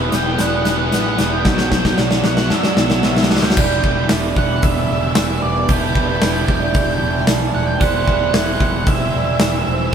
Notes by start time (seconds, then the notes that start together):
Already playing: E2 B2 E3 D4 G4 E5
0.02 E3 B3
0.09 E3 B3, snare, closed hi-hat
0.13 E1 E3 G3 G5
0.18 B3
0.24 E3 B3
0.32 E3 B3
0.38 E1 E3 B3 D4 D5 F#5, snare, closed hi-hat
0.46 E3 B3 F#5
0.55 E3 B3 F#5
0.62 E1 E3 B3 F#5, snare, closed hi-hat
0.67 E3 B3
0.71 F#5
0.77 E3 B3 F#5
0.84 E3 B3 F#5
0.91 A1 E3 G3 B3 B4 F#5, snare, closed hi-hat
1.00 E3 B3 F#5
1.08 E3 B3 F#5
1.15 E1 E3 B3 D4, snare, closed hi-hat
1.20 E3 F#5
1.24 B3
1.31 E3 B3 G5
1.38 E3 B3 G5
1.45 B1 B2 F#3 B3 D5 G5, kick, snare
1.52 B2 F#3 G5
1.58 B2 F#3, snare
1.62 G5
1.68 B2 F#3 G5, snare
1.72 B2, kick
1.78 F#3 G5
1.83 B2 F#3 G5, kick, snare
1.91 B2 F#3
1.98 B1 B2 F#3 D5, snare
2.06 B2 F#3
2.11 B2, snare
2.16 F#3
2.21 B2 F#3 E5, snare
2.25 B1 B2 F#3 B3 F#5
2.32 B2 F#3
2.37 F#3, snare
2.44 B2 F#3
2.50 F#2 B2 F#3 D4 D5 E5, snare
2.55 F#3
2.59 B2 E5
2.63 B2 F#3 E5, snare
2.72 B2 F#3 E5
2.77 B1 F#3, snare
2.82 B2 E5
2.87 B2 F#3 E5, snare
2.95 B2 F#3 E5
3.02 B1 B2 F#3 B3 E5, snare
3.10 B2 F#3 E5
3.17 B2 F#3 E5, snare
3.23 B2 F#3 E5, snare
3.30 D2 F#3 D4 D5 F#5, snare
3.35 B2, snare
3.42 B2 F#3 G5, snare
3.49 B2 F#3 G5, snare
3.56 E1 E3 G3 B3 D4 E4 G4 D5 G5, kick, crash
3.61 B4
3.65 G5
3.74 G5
3.82 E1 G5, kick
3.90 G5
3.98 G5
4.09 E1 E5, snare, open hi-hat
4.36 E1 F#5, kick
4.62 E1 E5, kick, open hi-hat
4.70 E5
4.78 E5
4.85 E5
4.89 E1 D5 E5
5.00 E5
5.08 E5
5.14 E1 E5, snare, open hi-hat
5.23 E5
5.29 E5
5.38 E5
5.42 E1 B4 D5
5.69 E1 E3 G3 D4 E4 G5, kick, open hi-hat
5.73 B4
5.77 G5
5.84 G5
5.91 G5, kick
5.96 E1 B4 G5
6.07 G5
6.15 G5
6.22 E1 G5, snare, open hi-hat
6.31 G5
6.40 G5
6.46 E1 D5 G5, kick
6.54 G5
6.62 G5
6.70 G5
6.74 E1 G5, kick, open hi-hat
6.85 G5
6.92 G5
7.00 E1 E5 G5
7.09 G5
7.16 G5
7.27 B1 D5, snare, open hi-hat
7.54 E1 F#5
7.67 G5
7.80 E1 E3 G3 C4 E4 C5 D5 F#5, kick, open hi-hat
7.84 C5 F#5
7.95 F#5
8.03 F#5
8.07 E1, kick
8.12 F#5
8.19 F#5
8.28 F#5
8.33 E1 E5 F#5, snare, open hi-hat
8.42 F#5
8.52 F#5
8.58 E1 F#5, kick
8.66 F#5
8.75 F#5
8.81 F#5
8.87 E1 E5, kick, open hi-hat
8.94 E5
9.02 E5
9.10 D5 E5
9.14 E1 E5
9.25 E5
9.34 E5
9.40 E1 E5, snare, open hi-hat
9.48 E5
9.57 E5
9.64 E1 C5 E5
9.72 E5
9.79 E5
9.87 E5